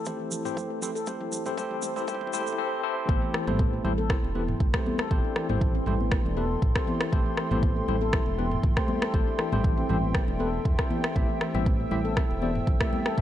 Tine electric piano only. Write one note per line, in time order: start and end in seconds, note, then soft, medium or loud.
0.07 0.42 C4 medium
0.07 0.42 E4 medium
0.07 0.42 G4 medium
0.07 0.42 A4 medium
0.07 0.42 C5 loud
0.45 0.79 C4 medium
0.45 0.79 E4 medium
0.45 0.79 G4 medium
0.45 0.79 A4 medium
0.45 0.79 C5 medium
0.82 0.90 C4 medium
0.82 0.90 E4 medium
0.82 0.90 G4 medium
0.82 0.90 A4 medium
0.82 0.90 C5 loud
1.07 1.43 C4 medium
1.07 1.43 E4 medium
1.07 1.43 G4 medium
1.07 1.43 A4 medium
1.07 1.43 C5 loud
1.46 1.56 C4 medium
1.46 1.56 E4 medium
1.46 1.56 G4 medium
1.46 1.56 A4 medium
1.46 1.56 C5 loud
1.58 1.93 C4 loud
1.58 1.93 E4 medium
1.58 1.93 G4 medium
1.58 1.93 A4 medium
1.58 1.93 C5 loud
1.96 2.06 C4 loud
1.96 2.06 E4 medium
1.96 2.06 G4 medium
1.96 2.06 A4 medium
1.96 2.06 C5 loud
2.08 2.31 C4 loud
2.08 2.32 E4 medium
2.08 2.31 G4 medium
2.08 2.31 A4 medium
2.08 2.31 C5 loud
2.33 2.57 C4 loud
2.33 2.57 E4 loud
2.33 2.57 G4 medium
2.33 2.57 A4 medium
2.33 2.57 C5 loud
2.58 2.82 C4 loud
2.58 2.82 E4 medium
2.58 2.82 G4 medium
2.58 2.82 A4 medium
2.58 2.82 C5 loud
2.83 3.07 C4 loud
2.83 3.07 E4 medium
2.83 3.07 G4 medium
2.83 3.07 A4 medium
2.83 3.07 C5 loud
3.09 3.44 C4 loud
3.09 3.44 E4 medium
3.09 3.44 G4 medium
3.09 3.44 A4 medium
3.09 3.44 C5 loud
3.47 3.82 C4 medium
3.47 3.82 E4 medium
3.47 3.82 G4 medium
3.47 3.82 A4 medium
3.47 3.82 C5 loud
3.84 3.92 C4 loud
3.84 3.92 E4 medium
3.84 3.92 G4 medium
3.84 3.92 A4 medium
3.84 3.92 C5 loud
4.10 4.17 C4 medium
4.10 4.17 E4 medium
4.10 4.17 G4 medium
4.10 4.17 A4 medium
4.10 4.17 C5 loud
4.35 4.42 C4 medium
4.35 4.42 E4 medium
4.35 4.42 G4 medium
4.35 4.42 A4 medium
4.35 4.42 B4 loud
4.74 5.08 C4 medium
4.74 5.08 E4 medium
4.74 5.08 G4 medium
4.74 5.08 A4 medium
4.74 5.08 C5 loud
5.11 5.46 C4 loud
5.11 5.46 E4 medium
5.11 5.46 G4 medium
5.11 5.46 A4 medium
5.11 5.46 C5 loud
5.50 5.84 C4 medium
5.50 5.84 E4 medium
5.50 5.84 G4 medium
5.50 5.84 A4 medium
5.50 5.84 C5 loud
5.87 5.94 C4 loud
5.87 5.94 E4 medium
5.87 5.94 G4 medium
5.87 5.94 A4 medium
5.87 5.94 C5 loud
6.12 6.19 C4 medium
6.12 6.19 E4 medium
6.12 6.19 G4 medium
6.12 6.19 A4 medium
6.12 6.19 C5 loud
6.37 6.44 C4 medium
6.37 6.44 E4 medium
6.37 6.44 G4 medium
6.37 6.44 A4 medium
6.37 6.44 B4 loud
6.76 7.10 C4 medium
6.76 7.10 E4 medium
6.76 7.10 G4 medium
6.76 7.10 A4 medium
6.76 7.10 C5 medium
7.13 7.48 C4 loud
7.13 7.48 E4 medium
7.13 7.48 G4 medium
7.13 7.48 A4 medium
7.13 7.48 C5 loud
7.51 7.85 C4 loud
7.51 7.85 E4 medium
7.51 7.85 G4 medium
7.51 7.85 A4 medium
7.51 7.85 C5 loud
7.88 7.96 C4 medium
7.88 7.95 E4 medium
7.88 7.95 G4 medium
7.88 7.96 A4 medium
7.88 7.95 C5 loud
8.14 8.21 C4 medium
8.14 8.21 E4 medium
8.14 8.21 G4 medium
8.14 8.21 A4 medium
8.14 8.21 C5 loud
8.38 8.46 C4 loud
8.38 8.46 E4 medium
8.38 8.46 G4 medium
8.38 8.46 A4 medium
8.38 8.46 B4 loud
8.77 9.11 C4 medium
8.77 9.11 E4 medium
8.77 9.11 G4 medium
8.77 9.11 A4 medium
8.77 9.11 C5 loud
9.14 9.50 C4 medium
9.14 9.50 E4 medium
9.14 9.50 G4 medium
9.14 9.50 A4 medium
9.14 9.50 C5 loud
9.53 9.87 C4 loud
9.53 9.87 E4 medium
9.53 9.87 G4 medium
9.53 9.87 A4 medium
9.53 9.87 C5 loud
9.89 9.97 C4 loud
9.89 9.97 E4 medium
9.89 9.97 G4 medium
9.89 9.97 A4 medium
9.89 9.97 C5 loud
10.15 10.22 C4 medium
10.15 10.22 E4 medium
10.15 10.22 G4 medium
10.15 10.22 A4 medium
10.15 10.22 C5 loud
10.40 10.47 C4 medium
10.40 10.47 E4 medium
10.40 10.47 G4 medium
10.40 10.47 A4 medium
10.40 10.47 B4 loud
10.79 11.13 C4 medium
10.79 11.13 E4 medium
10.79 11.13 G4 medium
10.79 11.13 A4 medium
10.79 11.13 C5 loud
11.16 11.51 C4 loud
11.16 11.51 E4 medium
11.16 11.51 G4 medium
11.16 11.51 C5 medium
11.16 11.51 E5 loud
11.55 11.89 C4 medium
11.55 11.89 E4 medium
11.55 11.89 G4 medium
11.55 11.89 C5 medium
11.55 11.89 E5 loud
11.91 11.99 C4 loud
11.91 11.99 E4 medium
11.91 11.99 G4 medium
11.91 11.99 C5 medium
11.91 11.99 E5 loud
12.17 12.24 C4 medium
12.17 12.24 E4 medium
12.17 12.24 G4 medium
12.17 12.24 C5 medium
12.17 12.24 E5 loud
12.42 12.49 C4 medium
12.42 12.49 E4 medium
12.42 12.49 G4 medium
12.42 12.49 C5 medium
12.42 12.49 D5 loud
12.81 13.15 C4 medium
12.81 13.15 E4 medium
12.81 13.15 G4 medium
12.81 13.15 C5 medium
12.81 13.15 E5 loud
13.18 13.21 C4 loud
13.18 13.21 C5 medium